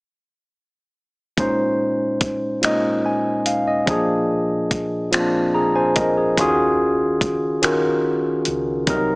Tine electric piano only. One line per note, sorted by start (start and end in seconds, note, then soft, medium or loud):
1.37 2.48 A#2 medium
1.37 2.48 G#3 medium
1.37 2.49 C#4 medium
1.37 2.49 D#4 medium
1.37 2.49 C5 medium
2.62 3.73 A#2 medium
2.62 3.74 G#3 medium
2.62 3.74 C#4 medium
2.62 3.74 D#4 medium
2.62 3.05 D#5 medium
3.06 3.44 G#5 soft
3.46 3.66 F5 medium
3.67 4.07 D#5 soft
3.86 4.97 A#2 medium
3.86 4.98 F3 medium
3.86 4.98 D4 medium
3.86 4.99 G#4 medium
5.11 6.22 A#2 medium
5.11 6.23 F3 medium
5.11 5.19 C4 soft
5.11 6.24 F4 medium
5.20 6.27 D4 medium
5.54 5.74 G#4 medium
5.54 5.74 A#5 medium
5.75 5.95 C5 medium
5.75 5.95 G#5 medium
5.96 6.15 A#4 medium
5.96 6.35 D#5 medium
6.17 6.40 G#4 medium
6.37 7.48 D#3 medium
6.37 7.48 C#4 medium
6.37 7.49 F4 medium
6.37 7.49 F#4 medium
6.37 7.50 G#4 medium
7.62 8.73 D#3 medium
7.62 8.73 C#4 medium
7.62 8.74 F4 medium
7.62 8.74 F#4 medium
7.62 8.74 A#4 medium
8.87 9.15 C3 medium
8.87 9.15 F#3 medium
8.87 9.15 D#4 medium
8.87 9.15 A#4 medium